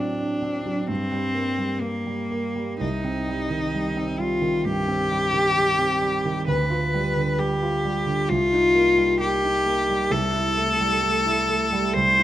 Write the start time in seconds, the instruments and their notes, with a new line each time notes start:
Already playing: grand piano A2 F#3 C4 D4, cello D4
0.20 grand piano D4
0.42 grand piano C4
0.65 grand piano F#3
0.87 grand piano G2, cello C4
1.12 grand piano G3
1.34 grand piano A#3
1.58 grand piano G3
1.81 cello A#3, grand piano A#3
2.06 grand piano G3
2.31 grand piano A#3
2.56 grand piano G3
2.81 grand piano C2, cello D#4
3.05 grand piano C4
3.28 grand piano G3
3.50 grand piano D#3
3.74 grand piano G3
3.97 grand piano C4
4.19 grand piano G3, cello F4
4.41 grand piano D#3
4.65 grand piano G2, cello G4
4.88 grand piano C4
5.11 grand piano G3
5.33 grand piano D#3
5.56 grand piano G3
5.79 grand piano C4
6.01 grand piano G3
6.25 grand piano D#3
6.47 grand piano D2, cello B4
6.70 grand piano F4
6.94 grand piano G3
7.16 grand piano D3
7.39 grand piano G3, cello G4
7.63 grand piano F4
7.85 grand piano G3
8.06 grand piano D3
8.29 grand piano C2, cello F4
8.52 grand piano D#4
8.75 grand piano A#3
8.97 grand piano G3
9.21 grand piano A#3, cello G4
9.44 grand piano D#4
9.66 grand piano A#3
9.89 grand piano G3
10.11 grand piano C2, cello A4
10.34 grand piano E4
10.57 grand piano A3
10.80 grand piano G3
11.04 grand piano A3
11.26 grand piano E4
11.49 grand piano A3
11.72 grand piano G3
11.93 grand piano C2, cello C5
12.19 grand piano E4